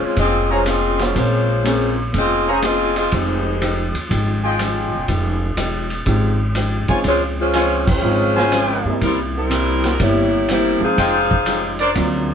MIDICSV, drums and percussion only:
0, 0, Header, 1, 2, 480
1, 0, Start_track
1, 0, Key_signature, -4, "minor"
1, 0, Tempo, 490998
1, 1132, Time_signature, 4, 2, 24, 8
1, 12065, End_track
2, 0, Start_track
2, 0, Title_t, "Drums"
2, 162, Note_on_c, 9, 51, 57
2, 167, Note_on_c, 9, 36, 33
2, 259, Note_off_c, 9, 51, 0
2, 265, Note_off_c, 9, 36, 0
2, 642, Note_on_c, 9, 44, 52
2, 642, Note_on_c, 9, 51, 67
2, 740, Note_off_c, 9, 44, 0
2, 740, Note_off_c, 9, 51, 0
2, 971, Note_on_c, 9, 51, 46
2, 976, Note_on_c, 9, 38, 40
2, 1069, Note_off_c, 9, 51, 0
2, 1073, Note_off_c, 9, 38, 0
2, 1131, Note_on_c, 9, 51, 55
2, 1133, Note_on_c, 9, 36, 33
2, 1229, Note_off_c, 9, 51, 0
2, 1231, Note_off_c, 9, 36, 0
2, 1617, Note_on_c, 9, 44, 50
2, 1617, Note_on_c, 9, 51, 68
2, 1714, Note_off_c, 9, 44, 0
2, 1714, Note_off_c, 9, 51, 0
2, 2090, Note_on_c, 9, 51, 54
2, 2096, Note_on_c, 9, 36, 32
2, 2187, Note_off_c, 9, 51, 0
2, 2194, Note_off_c, 9, 36, 0
2, 2566, Note_on_c, 9, 44, 58
2, 2566, Note_on_c, 9, 51, 63
2, 2663, Note_off_c, 9, 44, 0
2, 2663, Note_off_c, 9, 51, 0
2, 2894, Note_on_c, 9, 51, 48
2, 2992, Note_off_c, 9, 51, 0
2, 3047, Note_on_c, 9, 51, 59
2, 3056, Note_on_c, 9, 36, 32
2, 3144, Note_off_c, 9, 51, 0
2, 3154, Note_off_c, 9, 36, 0
2, 3535, Note_on_c, 9, 44, 59
2, 3535, Note_on_c, 9, 51, 67
2, 3633, Note_off_c, 9, 44, 0
2, 3633, Note_off_c, 9, 51, 0
2, 3859, Note_on_c, 9, 51, 45
2, 3957, Note_off_c, 9, 51, 0
2, 4016, Note_on_c, 9, 36, 34
2, 4016, Note_on_c, 9, 51, 60
2, 4114, Note_off_c, 9, 36, 0
2, 4114, Note_off_c, 9, 51, 0
2, 4489, Note_on_c, 9, 44, 49
2, 4489, Note_on_c, 9, 51, 61
2, 4587, Note_off_c, 9, 44, 0
2, 4587, Note_off_c, 9, 51, 0
2, 4967, Note_on_c, 9, 51, 55
2, 4972, Note_on_c, 9, 36, 34
2, 5065, Note_off_c, 9, 51, 0
2, 5070, Note_off_c, 9, 36, 0
2, 5446, Note_on_c, 9, 44, 61
2, 5446, Note_on_c, 9, 51, 68
2, 5544, Note_off_c, 9, 44, 0
2, 5544, Note_off_c, 9, 51, 0
2, 5769, Note_on_c, 9, 51, 45
2, 5867, Note_off_c, 9, 51, 0
2, 5923, Note_on_c, 9, 51, 63
2, 5931, Note_on_c, 9, 36, 34
2, 6021, Note_off_c, 9, 51, 0
2, 6028, Note_off_c, 9, 36, 0
2, 6401, Note_on_c, 9, 44, 53
2, 6401, Note_on_c, 9, 51, 60
2, 6499, Note_off_c, 9, 44, 0
2, 6499, Note_off_c, 9, 51, 0
2, 6727, Note_on_c, 9, 51, 46
2, 6734, Note_on_c, 9, 36, 53
2, 6825, Note_off_c, 9, 51, 0
2, 6832, Note_off_c, 9, 36, 0
2, 6881, Note_on_c, 9, 51, 60
2, 6889, Note_on_c, 9, 36, 31
2, 6979, Note_off_c, 9, 51, 0
2, 6987, Note_off_c, 9, 36, 0
2, 7366, Note_on_c, 9, 44, 59
2, 7366, Note_on_c, 9, 51, 67
2, 7464, Note_off_c, 9, 44, 0
2, 7464, Note_off_c, 9, 51, 0
2, 7697, Note_on_c, 9, 49, 75
2, 7699, Note_on_c, 9, 36, 81
2, 7795, Note_off_c, 9, 49, 0
2, 7796, Note_off_c, 9, 36, 0
2, 8183, Note_on_c, 9, 38, 40
2, 8280, Note_off_c, 9, 38, 0
2, 8328, Note_on_c, 9, 44, 60
2, 8328, Note_on_c, 9, 51, 63
2, 8425, Note_off_c, 9, 44, 0
2, 8425, Note_off_c, 9, 51, 0
2, 8811, Note_on_c, 9, 51, 58
2, 8816, Note_on_c, 9, 36, 34
2, 8909, Note_off_c, 9, 51, 0
2, 8914, Note_off_c, 9, 36, 0
2, 9293, Note_on_c, 9, 44, 63
2, 9293, Note_on_c, 9, 51, 67
2, 9391, Note_off_c, 9, 44, 0
2, 9391, Note_off_c, 9, 51, 0
2, 9617, Note_on_c, 9, 51, 48
2, 9622, Note_on_c, 9, 38, 40
2, 9715, Note_off_c, 9, 51, 0
2, 9720, Note_off_c, 9, 38, 0
2, 9773, Note_on_c, 9, 51, 55
2, 9776, Note_on_c, 9, 36, 32
2, 9870, Note_off_c, 9, 51, 0
2, 9874, Note_off_c, 9, 36, 0
2, 10250, Note_on_c, 9, 44, 55
2, 10250, Note_on_c, 9, 51, 62
2, 10348, Note_off_c, 9, 44, 0
2, 10348, Note_off_c, 9, 51, 0
2, 10734, Note_on_c, 9, 36, 33
2, 10734, Note_on_c, 9, 51, 68
2, 10832, Note_off_c, 9, 36, 0
2, 10832, Note_off_c, 9, 51, 0
2, 11057, Note_on_c, 9, 36, 55
2, 11155, Note_off_c, 9, 36, 0
2, 11203, Note_on_c, 9, 44, 51
2, 11203, Note_on_c, 9, 51, 69
2, 11300, Note_off_c, 9, 44, 0
2, 11300, Note_off_c, 9, 51, 0
2, 11525, Note_on_c, 9, 51, 45
2, 11623, Note_off_c, 9, 51, 0
2, 11686, Note_on_c, 9, 51, 60
2, 11691, Note_on_c, 9, 36, 33
2, 11784, Note_off_c, 9, 51, 0
2, 11788, Note_off_c, 9, 36, 0
2, 12065, End_track
0, 0, End_of_file